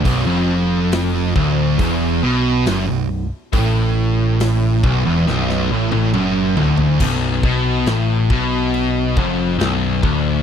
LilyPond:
<<
  \new Staff \with { instrumentName = "Distorted electric guitar" } { \clef bass \time 4/4 \key b \minor \tempo 4 = 69 b,,16 eis,4~ eis,16 d,8 e,8 b,8 fis,16 b,,8 r16 | a,4. b,,16 e,16 b,,8 a,16 a,16 fis,8 d,8 | b,,8 b,8 a,8 b,4 eis,8 b,,8 d,8 | }
  \new Staff \with { instrumentName = "Distorted electric guitar" } { \clef bass \time 4/4 \key b \minor b,,16 eis,4~ eis,16 d,8 e,8 b,8 fis,16 b,,8 r16 | a,4. b,,16 e,16 b,,8 a,16 a,16 fis,8 d,8 | b,,8 b,8 a,8 b,4 eis,8 b,,8 d,8 | }
  \new Staff \with { instrumentName = "Distorted electric guitar" } { \clef bass \time 4/4 \key b \minor b,,16 eis,4~ eis,16 d,8 e,8 b,8 fis,16 b,,8 r16 | a,4. b,,16 e,16 b,,8 a,16 a,16 fis,8 d,8 | r1 | }
  \new Staff \with { instrumentName = "Picked electric bass" } { \clef bass \time 4/4 \key b \minor b,,,16 eis,,4~ eis,,16 d,,8 e,,8 b,,8 fis,,16 b,,,8 r16 | a,,4. b,,,16 e,,16 b,,,8 a,,16 a,,16 fis,,8 d,,8 | b,,,8 b,,8 a,,8 b,,4 eis,,8 b,,,8 d,,8 | }
  \new DrumStaff \with { instrumentName = "Drums" } \drummode { \time 4/4 <hho bd>4 <hho sn>8 bd8 <hho bd>4 <hho sn>4 | <hho bd>4 <hho sn>8 bd8 sn16 sn8 tommh16 toml8 tomfh16 tomfh16 | <cymc bd>8 bd8 <cymc sn>8 bd8 cymc8 bd8 <cymc sn>8 bd8 | }
>>